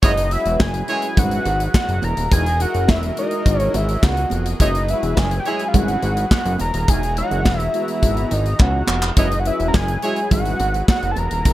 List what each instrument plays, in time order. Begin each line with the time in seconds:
0.03 analog synth bass F#1, analog synth pad F#3 E4 G#4 B4, analog polysynth G#3 C#4 E4 F#4 B4, horn section G#3 E4 C#5, analog synth lead D#5, kick, closed hi-hat, muted conga
0.17 closed hi-hat
0.31 analog polysynth G#3 C#4 E4 F#4 B4, analog synth lead E5, closed hi-hat
0.46 analog synth bass E1, closed hi-hat
0.60 analog synth bass F#1, analog synth lead G#5, kick, snare, clap, high conga
0.74 closed hi-hat
0.88 analog polysynth G#3 C#4 E4 F#4 A#4, horn section G#3 E4 C#5, analog synth lead G#5, closed hi-hat
0.96 analog polysynth B4
1.02 closed hi-hat
1.17 analog synth bass G#1, analog synth lead F#5, kick, closed hi-hat, low conga
1.31 closed hi-hat
1.45 analog synth bass G#1, closed hi-hat, muted conga
1.60 closed hi-hat
1.74 analog synth lead F#5, kick, snare, clap, high conga
1.89 analog synth bass F#1, closed hi-hat
2.02 analog synth bass E1, analog synth lead A#5, closed hi-hat, high conga
2.17 analog synth bass D#1, closed hi-hat
2.31 analog synth bass E1, analog synth pad E3 F#4 G#4 A#4 D#5, analog polysynth G#3 D#4 E4 F#4 A#4, analog synth lead G#5, kick, closed hi-hat, muted conga
2.46 closed hi-hat
2.60 analog polysynth G#3 D#4 E4 F#4 A#4, analog synth lead F#5, closed hi-hat
2.75 analog synth bass F#1, closed hi-hat
2.88 analog synth bass E1, analog synth lead E5, kick, snare, clap, high conga
3.03 closed hi-hat
3.17 analog polysynth G#3 D#4 E4 F#4 A#4, analog synth lead D#5, closed hi-hat
3.31 closed hi-hat
3.46 analog synth bass G#1, kick, closed hi-hat, muted conga
3.60 analog synth lead C#5, closed hi-hat
3.74 analog synth bass G#1, analog synth lead E5, closed hi-hat, muted conga
3.89 closed hi-hat
4.03 analog synth bass C#2, analog synth lead F#5, kick, snare, clap, high conga
4.17 closed hi-hat
4.30 analog synth bass F1, closed hi-hat, high conga
4.46 closed hi-hat
4.60 analog synth bass F#1, analog synth pad F#3 E4 B4, analog polysynth G#3 C#4 E4 F#4 B4, horn section G#3 E4 C#5, analog synth lead D#5, kick, closed hi-hat, muted conga
4.75 closed hi-hat
4.88 analog polysynth G#3 C#4 E4 F#4 B4, analog synth lead E5, closed hi-hat
5.03 analog synth bass E1, closed hi-hat
5.17 analog synth bass F#1, analog synth lead G#5, kick, snare, clap, high conga
5.31 closed hi-hat
5.40 analog synth lead G5
5.45 analog polysynth G#3 C#4 E4 F#4 G#4, horn section G#3 E4 C#5, analog synth lead G#5, closed hi-hat
5.59 closed hi-hat
5.68 analog synth lead F5
5.74 analog synth bass G#1, analog synth lead F#5, kick, closed hi-hat, muted conga, low conga
5.88 closed hi-hat
6.03 analog synth bass G#1, closed hi-hat, muted conga
6.17 closed hi-hat
6.31 analog synth lead F#5, kick, snare, clap, high conga
6.45 analog synth bass F#1, closed hi-hat
6.59 analog synth bass E1, analog synth lead A#5, closed hi-hat, high conga
6.74 analog synth bass D#1, closed hi-hat
6.88 analog synth bass E1, analog synth pad E3 E4 F#4 A#5, analog polysynth G#3 D#4 E4 F#4 A#4, analog synth lead G#5, kick, closed hi-hat, muted conga
7.03 closed hi-hat
7.16 analog polysynth G#3 D#4 E4 F#4 C#5, analog synth lead F#5, closed hi-hat
7.31 analog synth bass F#1, closed hi-hat
7.45 analog synth bass E1, kick, snare, clap, high conga
7.59 analog synth lead E5, closed hi-hat
7.74 analog polysynth G#3 B3 E4 F#4 B4, analog synth lead E5, closed hi-hat
7.88 closed hi-hat
8.03 analog synth bass G#1, kick, closed hi-hat
8.17 closed hi-hat
8.31 analog synth bass G#1, analog synth lead D#5, closed hi-hat, muted conga
8.46 closed hi-hat
8.60 analog synth bass C#2, analog synth lead F#5, kick, clap, high conga
8.87 analog synth bass F1, clap, high conga
9.02 clap
9.16 analog synth bass F#1, analog synth pad F#3 E4 G#4 B4, analog polysynth G#3 C#4 E4 F#4 B4, horn section G#3 E4 C#5, analog synth lead D#5, kick, closed hi-hat, muted conga
9.32 closed hi-hat
9.40 analog synth lead F#5
9.45 analog polysynth G#3 C#4 E4 F#4 B4, analog synth lead E5, closed hi-hat
9.60 analog synth bass E1, closed hi-hat
9.68 analog synth lead A#5
9.74 analog synth bass F#1, analog synth lead G#5, kick, snare, clap, high conga
9.88 closed hi-hat
10.02 analog polysynth G#3 C#4 E4 F#4 G#4, horn section G#3 E4 C#5, analog synth lead G#5, closed hi-hat
10.16 closed hi-hat
10.31 analog synth bass G#1, analog synth lead F#5, kick, closed hi-hat, low conga
10.45 closed hi-hat
10.60 analog synth bass G#1, closed hi-hat, muted conga
10.74 closed hi-hat
10.88 analog synth lead F#5, kick, snare, clap, high conga
11.03 analog synth bass F#1, closed hi-hat
11.11 analog synth lead A5
11.16 analog synth bass E1, analog synth lead A#5, closed hi-hat, high conga
11.31 analog synth bass D#1, closed hi-hat
11.45 analog synth bass E1, analog synth pad E3 F#4 A#4 D#5, analog polysynth G#3 D#4 E4 F#4 A#4, kick, closed hi-hat, muted conga